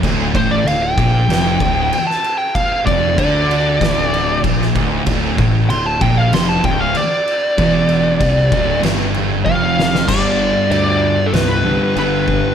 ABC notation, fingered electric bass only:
X:1
M:4/4
L:1/8
Q:1/4=95
K:Dm
V:1 name="Fingered electric bass" clef=bass
D,,, A,,, D,,, B,,, F,,, D,,, z2 | z F,,, D,,2 D,,,2 B,,, D,,, | D,,, A,,, D,,, B,,, F,,, D,,, z2 | E,,,2 C,, D,,, G,,,2 F,,,2 |
G,,,2 D,,2 C,,2 G,,,2 |]